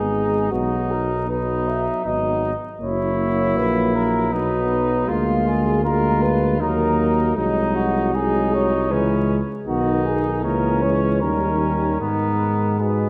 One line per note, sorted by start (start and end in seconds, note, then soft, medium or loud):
0.00 0.52 G#1 soft
0.00 0.53 G#3 soft
0.00 0.50 B3 soft
0.00 0.51 D#4 soft
0.00 0.52 G#4 medium
0.50 1.88 B1 soft
0.50 1.28 F#3 soft
0.50 1.27 B3 soft
0.50 1.27 D#4 soft
0.50 0.92 F#4 medium
0.91 1.30 A#4 medium
1.28 2.04 F#3 soft
1.28 1.87 B3 soft
1.28 2.03 D#4 soft
1.28 1.69 B4 medium
1.67 2.07 E5 medium
2.04 2.53 G#1 soft
2.04 2.53 F#3 soft
2.04 2.53 B3 soft
2.04 2.53 D#4 soft
2.04 2.55 D#5 medium
2.80 3.59 F#1 soft
2.80 4.28 F#3 medium
2.80 4.33 A#3 soft
2.80 4.34 E4 medium
2.80 3.58 C#5 medium
3.57 4.34 A#1 soft
3.57 3.96 B4 medium
3.95 4.34 A#4 medium
4.32 5.08 B1 soft
4.32 5.10 F#3 medium
4.32 5.07 B3 soft
4.32 5.10 D#4 soft
4.32 5.08 B4 medium
5.07 6.62 D2 medium
5.07 5.82 G#3 soft
5.07 5.82 A#3 soft
5.07 5.83 F4 soft
5.07 5.46 F4 medium
5.47 5.83 G#4 medium
5.83 6.58 G#3 soft
5.83 6.59 A#3 medium
5.83 6.62 F4 soft
5.83 6.23 A#4 medium
6.21 6.59 B4 medium
6.59 7.36 D#2 medium
6.59 7.35 F#3 medium
6.59 7.38 A#3 medium
6.59 7.36 D#4 soft
6.59 7.34 A#4 medium
7.36 8.92 C2 medium
7.36 8.12 F#3 medium
7.36 8.14 G#3 medium
7.36 7.76 D#4 medium
7.36 8.12 D#4 medium
7.75 8.16 F#4 medium
8.13 8.88 F#3 medium
8.13 8.74 G#3 soft
8.13 8.93 D#4 medium
8.13 8.55 G#4 medium
8.54 8.93 C#5 medium
8.89 9.40 C#2 medium
8.89 9.38 E3 medium
8.89 9.39 G#3 medium
8.89 9.41 C#4 soft
8.89 9.41 B4 medium
9.67 10.45 B1 medium
9.67 10.45 D#3 medium
9.67 10.46 B3 medium
9.67 10.40 D#4 medium
9.67 10.06 F#4 medium
10.04 10.44 G#4 medium
10.42 11.23 C#2 medium
10.42 11.21 E3 soft
10.42 10.83 A#3 soft
10.42 11.20 C#4 soft
10.42 10.83 A#4 medium
10.82 11.24 G#3 soft
10.82 11.22 C#5 medium
11.20 12.01 D#2 soft
11.20 11.99 D#3 soft
11.20 12.01 G3 soft
11.20 11.98 C#4 soft
11.20 12.00 A#4 medium
12.00 13.09 G#2 soft
12.00 12.78 D#3 soft
12.00 12.79 G#3 soft
12.00 12.78 B3 soft
12.00 12.80 A#4 medium
12.79 13.09 B2 soft
12.79 13.09 G#3 soft
12.79 13.09 B3 soft
12.79 13.09 G#4 soft